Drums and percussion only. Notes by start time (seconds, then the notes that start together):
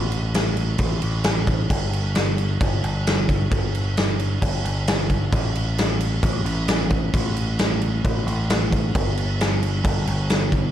0.12 crash
0.34 snare, crash
0.57 crash
0.78 kick, crash
1.02 crash
1.24 snare, crash
1.47 kick, crash
1.70 kick, crash
1.93 crash
2.15 snare, crash
2.38 crash
2.61 kick, crash
2.84 crash
3.07 snare, crash
3.29 kick, crash
3.52 kick, crash
3.75 crash
3.97 snare, crash
4.20 crash
4.42 kick, crash
4.65 crash
4.87 snare, crash
5.10 kick, crash
5.33 kick, crash
5.55 crash
5.78 snare, crash
6.01 crash
6.23 kick, crash
6.46 crash
6.68 snare, crash
6.90 kick, crash
7.14 kick, crash
7.37 crash
7.59 snare, crash
7.82 crash
8.05 kick, crash
8.28 crash
8.50 snare, crash
8.72 kick, crash
8.95 kick, crash
9.17 crash
9.41 snare, crash
9.63 crash
9.84 kick, crash
10.07 crash
10.30 snare, crash
10.52 kick, crash